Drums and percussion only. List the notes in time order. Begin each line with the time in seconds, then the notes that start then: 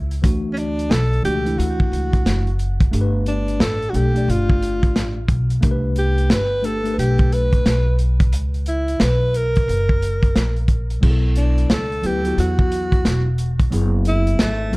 0.11 closed hi-hat
0.24 kick, closed hi-hat
0.57 closed hi-hat
0.79 closed hi-hat
0.91 snare, closed hi-hat
1.13 closed hi-hat
1.25 closed hi-hat
1.46 closed hi-hat
1.60 closed hi-hat
1.80 kick
1.93 closed hi-hat
2.13 kick, closed hi-hat
2.26 snare, closed hi-hat
2.47 closed hi-hat
2.59 closed hi-hat
2.80 kick, closed hi-hat
2.93 closed hi-hat
3.26 closed hi-hat
3.48 closed hi-hat
3.60 snare, closed hi-hat
3.82 closed hi-hat
3.94 closed hi-hat
4.16 closed hi-hat
4.30 closed hi-hat
4.50 kick
4.62 closed hi-hat
4.83 kick, closed hi-hat
4.96 snare, closed hi-hat
5.28 kick, closed hi-hat
5.50 closed hi-hat
5.63 kick, closed hi-hat
5.96 closed hi-hat
6.18 closed hi-hat
6.30 snare, closed hi-hat
6.64 closed hi-hat
6.85 closed hi-hat
6.99 closed hi-hat
7.18 kick, closed hi-hat
7.32 closed hi-hat
7.53 kick, closed hi-hat
7.66 snare, closed hi-hat
7.99 closed hi-hat
8.20 kick, closed hi-hat
8.33 closed hi-hat
8.54 closed hi-hat
8.66 closed hi-hat
8.88 closed hi-hat
9.00 snare, closed hi-hat
9.34 closed hi-hat
9.55 kick, closed hi-hat
9.69 closed hi-hat
9.89 kick
10.02 closed hi-hat
10.23 kick, closed hi-hat
10.36 snare, closed hi-hat
10.56 closed hi-hat
10.68 kick, closed hi-hat
10.90 closed hi-hat
11.03 kick, crash
11.36 closed hi-hat
11.58 closed hi-hat
11.70 snare, closed hi-hat
11.92 closed hi-hat
12.03 closed hi-hat
12.25 closed hi-hat
12.38 closed hi-hat
12.59 kick
12.72 closed hi-hat
12.92 kick, closed hi-hat
13.05 snare, closed hi-hat
13.38 closed hi-hat
13.60 kick, closed hi-hat
13.72 closed hi-hat
14.05 closed hi-hat
14.27 closed hi-hat
14.39 snare, closed hi-hat
14.73 closed hi-hat